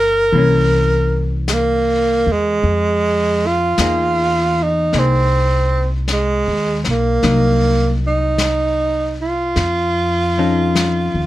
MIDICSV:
0, 0, Header, 1, 5, 480
1, 0, Start_track
1, 0, Key_signature, -4, "minor"
1, 0, Tempo, 1151631
1, 1096, Time_signature, 4, 2, 24, 8
1, 3495, Tempo, 1181102
1, 4665, End_track
2, 0, Start_track
2, 0, Title_t, "Hollow-body jazz guitar"
2, 0, Program_c, 0, 26
2, 0, Note_on_c, 0, 53, 40
2, 0, Note_on_c, 0, 58, 38
2, 0, Note_on_c, 0, 61, 41
2, 134, Note_off_c, 0, 53, 0
2, 136, Note_on_c, 0, 52, 42
2, 137, Note_off_c, 0, 58, 0
2, 138, Note_off_c, 0, 61, 0
2, 145, Note_on_c, 0, 58, 42
2, 156, Note_on_c, 0, 61, 42
2, 1096, Note_off_c, 0, 52, 0
2, 1101, Note_off_c, 0, 58, 0
2, 1106, Note_off_c, 0, 61, 0
2, 1583, Note_on_c, 0, 58, 41
2, 1586, Note_on_c, 0, 63, 43
2, 1587, Note_on_c, 0, 68, 45
2, 2048, Note_off_c, 0, 58, 0
2, 2053, Note_on_c, 0, 58, 37
2, 2055, Note_off_c, 0, 63, 0
2, 2059, Note_off_c, 0, 68, 0
2, 2060, Note_on_c, 0, 63, 37
2, 2064, Note_on_c, 0, 68, 36
2, 3010, Note_off_c, 0, 58, 0
2, 3014, Note_off_c, 0, 63, 0
2, 3014, Note_on_c, 0, 54, 38
2, 3015, Note_on_c, 0, 58, 44
2, 3017, Note_off_c, 0, 68, 0
2, 3019, Note_on_c, 0, 63, 37
2, 3971, Note_off_c, 0, 54, 0
2, 3972, Note_off_c, 0, 58, 0
2, 3974, Note_off_c, 0, 63, 0
2, 4304, Note_on_c, 0, 53, 39
2, 4308, Note_on_c, 0, 61, 41
2, 4309, Note_on_c, 0, 63, 43
2, 4310, Note_on_c, 0, 69, 44
2, 4665, Note_off_c, 0, 53, 0
2, 4665, Note_off_c, 0, 61, 0
2, 4665, Note_off_c, 0, 63, 0
2, 4665, Note_off_c, 0, 69, 0
2, 4665, End_track
3, 0, Start_track
3, 0, Title_t, "Tenor saxophone"
3, 0, Program_c, 1, 66
3, 0, Note_on_c, 1, 70, 87
3, 555, Note_off_c, 1, 70, 0
3, 621, Note_on_c, 1, 56, 54
3, 638, Note_on_c, 1, 58, 82
3, 644, Note_off_c, 1, 56, 0
3, 965, Note_on_c, 1, 56, 81
3, 971, Note_off_c, 1, 58, 0
3, 1443, Note_on_c, 1, 65, 85
3, 1450, Note_off_c, 1, 56, 0
3, 1927, Note_on_c, 1, 63, 78
3, 1933, Note_off_c, 1, 65, 0
3, 2077, Note_on_c, 1, 60, 78
3, 2083, Note_off_c, 1, 63, 0
3, 2472, Note_off_c, 1, 60, 0
3, 2551, Note_on_c, 1, 56, 71
3, 2850, Note_off_c, 1, 56, 0
3, 2876, Note_on_c, 1, 58, 74
3, 3332, Note_off_c, 1, 58, 0
3, 3362, Note_on_c, 1, 63, 80
3, 3811, Note_off_c, 1, 63, 0
3, 3833, Note_on_c, 1, 65, 78
3, 4665, Note_off_c, 1, 65, 0
3, 4665, End_track
4, 0, Start_track
4, 0, Title_t, "Upright bass"
4, 0, Program_c, 2, 32
4, 0, Note_on_c, 2, 31, 69
4, 119, Note_off_c, 2, 31, 0
4, 135, Note_on_c, 2, 36, 67
4, 925, Note_off_c, 2, 36, 0
4, 944, Note_on_c, 2, 40, 61
4, 1086, Note_off_c, 2, 40, 0
4, 1098, Note_on_c, 2, 41, 69
4, 1558, Note_off_c, 2, 41, 0
4, 1578, Note_on_c, 2, 40, 59
4, 2038, Note_off_c, 2, 40, 0
4, 2058, Note_on_c, 2, 36, 74
4, 2677, Note_off_c, 2, 36, 0
4, 2699, Note_on_c, 2, 39, 52
4, 2844, Note_off_c, 2, 39, 0
4, 2860, Note_on_c, 2, 35, 58
4, 3005, Note_off_c, 2, 35, 0
4, 3017, Note_on_c, 2, 36, 69
4, 3957, Note_off_c, 2, 36, 0
4, 3972, Note_on_c, 2, 41, 67
4, 4599, Note_off_c, 2, 41, 0
4, 4616, Note_on_c, 2, 39, 50
4, 4665, Note_off_c, 2, 39, 0
4, 4665, End_track
5, 0, Start_track
5, 0, Title_t, "Drums"
5, 139, Note_on_c, 9, 25, 30
5, 616, Note_off_c, 9, 25, 0
5, 616, Note_on_c, 9, 25, 28
5, 616, Note_on_c, 9, 38, 36
5, 616, Note_on_c, 9, 44, 50
5, 658, Note_off_c, 9, 38, 0
5, 658, Note_off_c, 9, 44, 0
5, 1097, Note_off_c, 9, 25, 0
5, 1097, Note_on_c, 9, 25, 33
5, 1574, Note_off_c, 9, 25, 0
5, 1574, Note_on_c, 9, 25, 31
5, 1574, Note_on_c, 9, 38, 39
5, 1574, Note_on_c, 9, 44, 41
5, 1616, Note_off_c, 9, 38, 0
5, 1616, Note_off_c, 9, 44, 0
5, 2054, Note_off_c, 9, 25, 0
5, 2054, Note_on_c, 9, 25, 36
5, 2054, Note_on_c, 9, 38, 23
5, 2096, Note_off_c, 9, 38, 0
5, 2533, Note_off_c, 9, 25, 0
5, 2533, Note_on_c, 9, 25, 31
5, 2533, Note_on_c, 9, 38, 37
5, 2533, Note_on_c, 9, 44, 48
5, 2574, Note_off_c, 9, 38, 0
5, 2574, Note_off_c, 9, 44, 0
5, 2852, Note_on_c, 9, 38, 24
5, 2893, Note_off_c, 9, 38, 0
5, 3012, Note_off_c, 9, 25, 0
5, 3012, Note_on_c, 9, 25, 32
5, 3012, Note_on_c, 9, 38, 24
5, 3053, Note_off_c, 9, 38, 0
5, 3494, Note_off_c, 9, 25, 0
5, 3494, Note_on_c, 9, 25, 28
5, 3494, Note_on_c, 9, 38, 38
5, 3494, Note_on_c, 9, 44, 45
5, 3535, Note_off_c, 9, 38, 0
5, 3535, Note_off_c, 9, 44, 0
5, 3972, Note_off_c, 9, 25, 0
5, 3972, Note_on_c, 9, 25, 33
5, 3972, Note_on_c, 9, 38, 24
5, 4013, Note_off_c, 9, 38, 0
5, 4458, Note_off_c, 9, 25, 0
5, 4458, Note_on_c, 9, 25, 31
5, 4458, Note_on_c, 9, 38, 39
5, 4458, Note_on_c, 9, 44, 48
5, 4498, Note_off_c, 9, 38, 0
5, 4498, Note_off_c, 9, 44, 0
5, 4665, Note_off_c, 9, 25, 0
5, 4665, End_track
0, 0, End_of_file